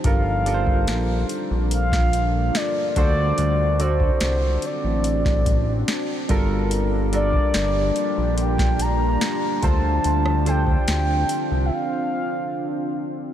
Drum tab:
HH |x-x-x-x-x-x-x-x-|x-x-x-x-x-x-x-x-|x-x-x-x-x-x-x-x-|x-x-x-x---------|
SD |----o----o--o---|----o----o--o---|----o----o--o---|-r--o-----------|
BD |o--o-----o----o-|---o-----oo---o-|---o-----o----o-|---o------------|